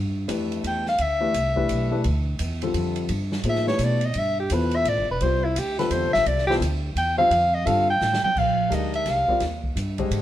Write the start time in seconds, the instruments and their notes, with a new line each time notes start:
Already playing: upright bass G2
0.28 upright bass F2, grand piano E3 A3 D4 G4 B4, hi-hat pedal, ride
0.52 ride
0.64 upright bass E2, soprano saxophone G5, ride
0.86 soprano saxophone F5, snare
0.98 upright bass D2, soprano saxophone E5, ride
1.20 grand piano E3 A3 D4 G4 B4
1.34 upright bass C2, hi-hat pedal, ride
1.56 grand piano E3 A3 D4 G4 B4, kick
1.69 upright bass B1, hi-hat pedal, ride
1.91 grand piano E3 A3 D4 G4 B4
2.04 upright bass D2, ride
2.39 upright bass E2, hi-hat pedal, ride
2.62 grand piano D3 G3 C4 F4 A4, ride
2.74 upright bass F2, ride
2.96 ride
3.09 upright bass G2, ride
3.32 snare
3.44 upright bass A2, grand piano F3 A#3 D#4 G#4 C5, ride
3.49 soprano saxophone E5
3.55 snare
3.67 grand piano E3 A3 D4 G4 B4, soprano saxophone C#5, snare
3.79 upright bass B2, hi-hat pedal, ride
3.84 soprano saxophone D5
4.01 ride
4.05 soprano saxophone D#5
4.14 upright bass G2, ride
4.19 soprano saxophone E5
4.40 soprano saxophone G4
4.50 upright bass E2, grand piano B2 E4 F4 A4 C5, hi-hat pedal, ride
4.54 soprano saxophone B4
4.71 ride
4.76 soprano saxophone E5
4.85 upright bass A1, soprano saxophone D5, ride
4.97 upright bass G1
5.10 upright bass E1, soprano saxophone B4
5.21 upright bass C2, grand piano G3 C4 F4 B4 D5, soprano saxophone C5, ride
5.44 soprano saxophone E4
5.56 upright bass D2, soprano saxophone G4, hi-hat pedal, ride
5.78 grand piano D3 G3 C4 F4 A4, soprano saxophone B4, snare, ride
5.91 upright bass E2, soprano saxophone C5, hi-hat pedal, ride
6.03 upright bass C2
6.13 upright bass A1, soprano saxophone E5, snare
6.26 upright bass C2, soprano saxophone D5, ride
6.38 snare
6.47 grand piano F3 B3 E4 A4 C5, soprano saxophone G4, snare
6.60 upright bass D2, hi-hat pedal, ride
6.95 upright bass E2, soprano saxophone G5, ride
7.18 grand piano D3 G3 C4 F4 C5, soprano saxophone F5
7.30 upright bass F2, ride
7.54 soprano saxophone D#5
7.65 upright bass G2, grand piano D3 G3 C4 F4 A4, soprano saxophone F5, ride
7.90 soprano saxophone G5
8.01 upright bass A2, snare, hi-hat pedal
8.13 snare
8.23 soprano saxophone G5, muted upright bass stroke, mid tom
8.36 upright bass A#1, soprano saxophone F5, kick, crash
8.69 upright bass D2, grand piano G#3 D4 D#4 G4 A#4, hi-hat pedal, ride
8.74 soprano saxophone D#5
8.94 soprano saxophone E5, ride
9.06 upright bass C2, snare, ride
9.10 soprano saxophone F5
9.28 grand piano G3 C4 F4 A#4 D5, muted upright bass stroke, kick
9.40 upright bass D#2, snare, ride
9.64 kick
9.76 upright bass G2, hi-hat pedal, ride
9.98 grand piano D3 G#3 G4 C5 D#5, kick, ride
10.11 upright bass G#2, ride